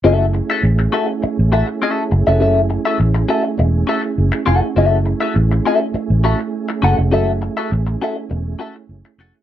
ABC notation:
X:1
M:4/4
L:1/16
Q:1/4=102
K:F#m
V:1 name="Clean electric guitar"
[CFAe] z2 [CFAe] z2 [CFAe] z3 [CFAe] z [CFAe] z2 [CFAe] | [CFAe] z2 [CFAe] z2 [CFAe] z3 [CFAe] z3 [CFAf] z | [CFAe] z2 [CFAe] z2 [CFAe] z3 [CFAe] z3 [CFAf] z | [CFAe] z2 [CFAe] z2 [CFAe] z3 [CFAe] z3 [CFAf] z |]
V:2 name="Tonewheel organ"
[A,CEG]16- | [A,CEG]16- | [A,CEG]16- | [A,CEG]16 |]
V:3 name="Fingered electric bass" clef=bass
F,,,3 z A,,,2 z3 A,,,2 z3 F,,, ^E,,, | F,,,3 z A,,,2 z2 E,,,2 z2 F,,, z ^E,,, z | F,,,3 z A,,,2 z3 A,,,2 z3 F,,, ^E,,, | F,,,3 z A,,,2 z2 E,,,2 z2 F,,, z ^E,,, z |]